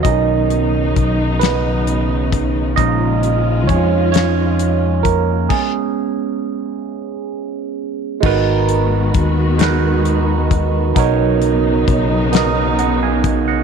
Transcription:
<<
  \new Staff \with { instrumentName = "Tine electric piano" } { \time 6/8 \key gis \dorian \tempo 4. = 44 << { <dis' dis''>4. <b b'>4. | <dis' dis''>4 <cis' cis''>8 <cis' cis''>4 <ais ais'>8 | gis'2~ gis'8 r8 | r2. |
r2 <dis'' fis''>16 <eis'' gis''>8 <dis'' fis''>16 | } \\ { <dis cis' ais'>2. | <eis gis cis'>4. r4. | <gis b cis'>4. r4. | <gis dis' fis' ais' b'>4. <gis dis' fis' ais' b'>4. |
<b, b dis' ais' cis''>4. <b, b dis' ais' dis''>4. | } >> }
  \new Staff \with { instrumentName = "String section" } { \clef bass \time 6/8 \key gis \dorian << { <b, fis dis'>2. | <eis gis eis'>2. | r2. | <gis b fis'>2. |
<fis b dis'>2. | } \\ { cis2.~ | cis2. | r2. | dis2. |
cis2. | } >> }
  \new Staff \with { instrumentName = "Fingered electric bass" } { \clef bass \time 6/8 \key gis \dorian b,,4 b,,2 | ais,,4 eis,2 | r2. | gis,,4 dis,2 |
b,,4 b,,2 | }
  \new DrumStaff \with { instrumentName = "Drums" } \drummode { \time 6/8 <hh bd>8 hh8 <hh bd>8 <hh sn>8 hh8 <hh bd>8 | <hh bd>8 hh8 <hh bd>8 <hh sn>8 hh8 <hh bd>8 | <cymc bd>4. r4. | <cymc bd>8 hh8 <hh bd>8 <hh sn>8 hh8 <hh bd>8 |
<hh bd>8 hh8 <hh bd>8 <hh sn>8 hh8 <hh bd>8 | }
>>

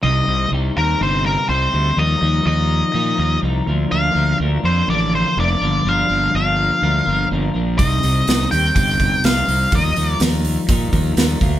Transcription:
<<
  \new Staff \with { instrumentName = "Lead electric guitar" } { \time 4/4 \key c \minor \tempo 4 = 124 ees''4 r8 bes'8 c''8 bes'8 c''4 | ees''4 ees''2 r4 | f''4 r8 c''8 d''8 c''8 d''4 | f''4 f''2 r4 |
ees''4. g''8 g''4 f''4 | ees''4 r2. | }
  \new Staff \with { instrumentName = "Clean electric guitar" } { \time 4/4 \key c \minor <c g c' ees' g'>8 <c' ees' g'>8 <g c' ees' g'>4 <c g c' ees' g'>8 <c' ees' g'>8 <g c' ees' g'>8 <c' ees' g'>8 | <ees f g ees' bes'>8 <g ees' bes'>8 <f g ees' bes'>4 <ees f g ees' bes'>8 <g ees' bes'>8 <f g ees' bes'>8 <d f bes d' bes'>8 | <d f bes d' bes'>8 <bes d' bes'>8 <f bes d' bes'>4 <d f bes d' bes'>8 <bes d' bes'>8 <f bes d' bes'>8 <g, d f bes d' bes'>8 | <g, d f bes d' bes'>8 <f bes d' bes'>8 <f bes d' bes'>4 <g, d f bes d' bes'>8 <f bes d' bes'>8 <f bes d' bes'>8 <f bes d' bes'>8 |
<c g c' ees' g'>8 <c' ees' g'>8 <g c' ees' g'>4 <c g c' ees' g'>8 <c' ees' g'>8 <g c' ees' g'>8 <c' ees' g'>8 | <ees f g ees' bes'>8 <g ees' bes'>8 <f g ees' bes'>4 <ees f g ees' bes'>8 <g ees' bes'>8 <f g ees' bes'>8 <d bes f' bes'>8 | }
  \new Staff \with { instrumentName = "Fingered electric bass" } { \clef bass \time 4/4 \key c \minor c,8 c,8 c,8 ees,8 g,,4 c,8 d,8 | ees,8 ees,8 ees,4 bes,8 ees,8 c,8 d,8 | d,8 d,8 d,8 f,8 a,,4 f,,8 g,,8 | g,,8 g,,8 g,,4 d,8 g,,8 g,,8 bes,,8 |
c,8 c,8 c,8 ees,8 g,,4 c,8 c,8 | ees,8 ees,8 ees,4 bes,8 ees,8 ees,8 d,8 | }
  \new DrumStaff \with { instrumentName = "Drums" } \drummode { \time 4/4 r4 r4 r4 r4 | r4 r4 r4 r4 | r4 r4 r4 r4 | r4 r4 r4 r4 |
<hho bd>8 hho8 <hho sn>8 hho8 <hho bd>8 <hho bd>8 <hho sn>8 hho8 | <hho bd>8 hho8 <hho sn>8 hho8 <hho bd>8 <hho bd>8 <hho sn>8 <hho bd>8 | }
>>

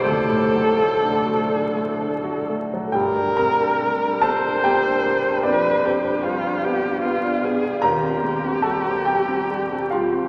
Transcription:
<<
  \new Staff \with { instrumentName = "Viola" } { \time 6/8 \key g \minor \tempo 4. = 48 a'2~ a'8 r8 | bes'4. c''4. | b'8 g'8 f'8 g'8 f'8 aes'8 | g'2. | }
  \new Staff \with { instrumentName = "Grand piano" } { \time 6/8 \key g \minor << { r2. | <g' g''>8 <bes' bes''>4 <a' a''>8 <g' g''>4 | <d' d''>2~ <d' d''>8 r8 | <bes' bes''>4 <a' a''>8 <g' g''>4 <f' f''>8 | } \\ { d,16 a,16 fis16 a16 d'16 fis'16 d'16 a16 d'16 fis'16 a16 fis16 | g,16 d'16 c'16 d'16 g16 d'16 bes16 d'16 bes16 d'16 bes16 d'16 | f,16 d'16 c'16 d'16 g16 d'16 b16 d'16 b16 d'16 b16 d'16 | ees,16 c'16 bes16 c'16 g16 c'16 g16 c'16 g16 c'16 g16 c'16 | } >> }
>>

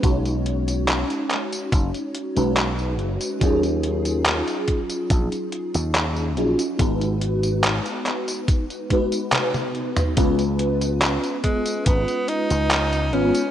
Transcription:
<<
  \new Staff \with { instrumentName = "FM electric piano" } { \time 4/4 \key cis \mixolydian \tempo 4 = 71 <gis cis' dis' fis' cis''>2~ <gis cis' dis' fis' cis''>8. <gis cis' dis' fis' b'>16 r4 | <fis cis' dis' eis' gis'>2.~ <fis cis' dis' eis' gis'>8 <fis cis' dis' eis' gis'>8 | <gis b dis' fis' b'>2~ <gis b dis' fis' b'>8 <gis b dis' fis' b'>4. | <gis b cis' eis' b'>2.~ <gis b cis' eis' b'>8 <gis b cis' eis' b'>8 | }
  \new Staff \with { instrumentName = "Tenor saxophone" } { \time 4/4 \key cis \mixolydian r1 | r1 | r1 | r4. gis8 b8 dis'4 cis'8 | }
  \new Staff \with { instrumentName = "Slap bass" } { \clef bass \time 4/4 \key cis \mixolydian b,,4~ b,,16 r8. fis,,16 r8 b,,8. fis,,16 r16 | dis,4~ dis,16 r8. ais,,16 r8 dis,8. ais,,16 r16 | gis,,4~ gis,,16 r2 r8. | cis,4~ cis,16 r8. gis,,16 r8 cis,8. gis,,16 r16 | }
  \new DrumStaff \with { instrumentName = "Drums" } \drummode { \time 4/4 <hh bd tamb>16 <hh tamb>16 hh16 <hh tamb>16 <hc hh tamb>16 <hh tamb>16 <hc hh>16 <hh tamb>16 <hh bd tamb>16 <hh tamb>16 hh16 <hh tamb>16 <hc hh tamb>16 tamb16 hh16 <hh tamb>16 | <hh bd tamb>16 <hh tamb>16 hh16 <hh tamb>16 <hc hh tamb>16 <hh tamb>16 <hh bd>16 <hh tamb>16 <hh bd tamb>16 <hh tamb>16 hh16 <hh tamb>16 <hc hh tamb>16 tamb16 hh16 <hh tamb>16 | <hh bd tamb>16 <hh tamb>16 hh16 <hh tamb>16 <hc hh tamb>16 <hh tamb>16 <hc hh>16 <hh tamb>16 <hh bd tamb>16 <hh tamb>16 <hh bd>16 <hh tamb>16 <hc hh tamb tommh>16 <tamb tommh>16 hh16 <hh tamb toml>16 | <hh bd tamb>16 <hh tamb>16 hh16 <hh tamb>16 <hc hh tamb>16 <hh tamb>16 <hh bd>16 <hh tamb>16 <hh bd tamb>16 <hh tamb>16 hh16 <hh tamb>16 <hc hh tamb>16 <hh tamb>16 hh16 <hh tamb>16 | }
>>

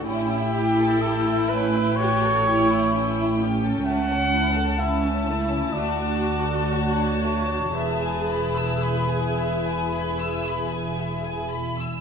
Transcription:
<<
  \new Staff \with { instrumentName = "Violin section" } { \time 4/4 \key a \mixolydian \tempo 4 = 62 g''1 | \key e \mixolydian a''1~ | a''4 gis''2. | }
  \new Staff \with { instrumentName = "Trumpet" } { \time 4/4 \key a \mixolydian g'4 a'8 b'8 cis''4. r8 | \key e \mixolydian fis''4 e''4 d''4 cis''4 | b'2.~ b'8 r8 | }
  \new Staff \with { instrumentName = "Violin section" } { \time 4/4 \key a \mixolydian << { cis'16 e'16 g'16 a'16 g'16 e'16 cis'16 e'16 g'16 a'16 g'16 e'16 cis'16 e'16 g'16 a'16 | \key e \mixolydian a16 cis'16 e'16 a'16 e'16 cis'16 a16 cis'16 a16 d'16 fis'16 a'16 fis'16 d'16 a16 d'16 | e''16 gis''16 b''16 e'''16 b''16 gis''16 e''16 gis''16 b''16 e'''16 b''16 gis''16 e''16 gis''16 b''16 e'''16 | } \\ { e'1~ | e'2 fis'2 | e'1 | } >> }
  \new Staff \with { instrumentName = "Viola section" } { \time 4/4 \key a \mixolydian e'2 fis'8 e'8 e'8 cis'8~ | \key e \mixolydian cis'4 cis'8 e'8 fis'2 | gis'2.~ gis'8 r8 | }
  \new Staff \with { instrumentName = "Cello section" } { \clef bass \time 4/4 \key a \mixolydian a,1 | \key e \mixolydian cis,2 d,2 | e,1 | }
  \new Staff \with { instrumentName = "Double bass section" } { \clef bass \time 4/4 \key a \mixolydian a,,1 | \key e \mixolydian cis,2 d,2 | e,,1 | }
>>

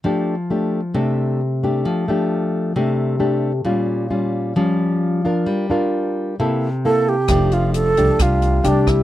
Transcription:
<<
  \new Staff \with { instrumentName = "Alto flute" } { \time 4/4 \key f \major \tempo 4 = 133 r1 | r1 | r1 | r2. a'8 g'8~ |
g'8 f'8 a'4 f'4 d'8 e'8 | }
  \new Staff \with { instrumentName = "Nylon-string guitar" } { \time 4/4 \key f \major << { <a d' g'>8 r8 <a d' g'>8 r8 <a d' g'>4 r8 <a d' g'>8~ | <a d' g'>8 <a d' g'>4. <a d' g'>4 <a d' g'>8 r8 | <g des' f'>4 <g des' f'>4 <g des' f'>4. <d' f' bes'>8~ | <d' f' bes'>8 <d' f' bes'>4. <bes e' a'>8 r8 <bes e' a'>8 r8 |
<a d' g'>4. <a d' g'>4. <a d' g'>4 | } \\ { f2 c2 | f2 c2 | bes,2 f2 | g2 c2 |
f2 c2 | } >> }
  \new Staff \with { instrumentName = "Upright bass" } { \clef bass \time 4/4 \key f \major r1 | r1 | r1 | r1 |
f,,4. c,16 r16 c,4 c,4 | }
  \new DrumStaff \with { instrumentName = "Drums" } \drummode { \time 4/4 r4 r4 r4 r4 | r4 r4 r4 r4 | r4 r4 r4 r4 | r4 r4 r4 r4 |
<hh bd ss>8 hh8 hh8 hh8 <hh bd ss>8 hh8 hh8 <hh bd ss>8 | }
>>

